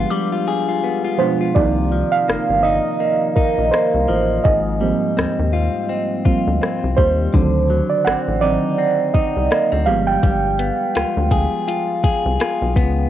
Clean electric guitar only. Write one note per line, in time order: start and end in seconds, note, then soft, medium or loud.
0.00 0.11 G3 medium
0.00 0.82 B3 medium
0.00 0.32 F4 medium
0.00 0.47 G#4 medium
0.11 1.91 G3 medium
0.32 0.68 F4 medium
0.48 1.64 G#4 medium
0.69 1.04 F4 medium
0.84 1.19 B3 medium
1.04 1.40 F4 medium
1.20 1.64 B3 medium
1.41 2.64 F4 medium
1.56 4.45 C3 medium
1.92 4.08 F3 medium
2.28 3.00 A#3 medium
2.64 3.36 D#4 medium
3.00 3.72 A#3 medium
3.36 5.53 D#4 medium
3.73 5.17 A#3 medium
4.08 4.80 F3 medium
4.45 7.34 G#2 medium
4.81 6.96 G3 medium
5.17 5.89 C4 medium
5.53 6.24 F4 medium
5.89 6.61 C4 medium
6.25 7.42 F4 medium
6.61 7.73 C4 medium
6.98 7.42 G3 medium
7.34 10.84 D3 medium
7.70 9.86 F#3 medium
8.06 8.77 C4 medium
8.42 9.13 D#4 medium
8.78 9.50 C4 medium
9.15 9.95 D#4 medium
9.51 9.72 A#3 medium
9.72 9.95 C4 medium
9.87 10.23 G3 medium
10.23 13.09 G3 medium
10.59 12.75 B3 medium
10.95 11.68 F4 medium
11.32 12.03 G#4 medium
11.68 12.40 F4 medium
12.04 13.09 G#4 medium
12.40 13.09 F4 medium
12.76 13.09 B3 medium